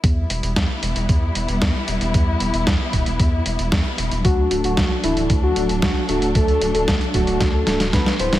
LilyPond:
<<
  \new Staff \with { instrumentName = "Soft synth lead" } { \time 4/4 \key e \minor \tempo 4 = 114 r1 | r1 | fis'8 r16 fis'8 r16 e'8 r16 fis'8 r16 fis'8 fis'8 | a'8 r16 a'8 r16 fis'8 r16 a'8 r16 b'8 c''8 | }
  \new Staff \with { instrumentName = "Analog polysynth" } { \time 4/4 \key e \minor r1 | r1 | r8 <a d' fis' a'>4 <a d' fis' a'>4 <a d' fis' a'>4 <a d' fis' a'>8~ | <a d' fis' a'>8 <a d' fis' a'>4 <a d' fis' a'>4 <a d' fis' a'>4 <b e' g' b'>8 | }
  \new Staff \with { instrumentName = "String section" } { \time 4/4 \key e \minor <g b e'>1~ | <g b e'>1 | <fis a d'>1~ | <fis a d'>1 | }
  \new Staff \with { instrumentName = "Analog synth bass" } { \clef bass \time 4/4 \key e \minor e,8 e,,16 e,,16 e,16 r16 e,,16 e,,16 e,8 e,,16 e,,16 e,16 r16 e,,16 e,,16 | e,8 e,,16 e,,16 e,16 r16 e,,16 e,,16 e,8 e,,16 e,,16 e,16 r16 e,,16 e,,16 | d,8 d,,16 d,,16 d,16 r16 d,,16 d,,16 d,8 d,,16 d,,16 d,16 r16 d,,16 d,,16 | d,8 d,,16 d,,16 d,16 r16 d,,16 d,,16 d,8 d,,16 d,,16 d,16 r16 d,,16 d,,16 | }
  \new DrumStaff \with { instrumentName = "Drums" } \drummode { \time 4/4 <hh bd>8 hh16 hh16 <hh bd sn>8 hh16 hh16 <hh bd>8 hh16 hh16 <hh bd sn>8 hh16 hh16 | <hh bd>8 hh16 hh16 <hh bd sn>8 <hh bd>16 hh16 <hh bd>8 hh16 hh16 <hh bd sn>8 hh16 hh16 | <hh bd>8 hh16 hh16 <hh bd sn>8 hh16 hh16 <hh bd>8 hh16 hh16 <hh bd sn>8 hh16 hh16 | <hh bd>16 hh16 hh16 hh16 <hh bd sn>16 hh16 <hh bd>16 hh16 <hh bd sn>8 <hh sn>16 <hh sn>16 <hh bd sn>16 sn16 hh16 <hh sn>16 | }
>>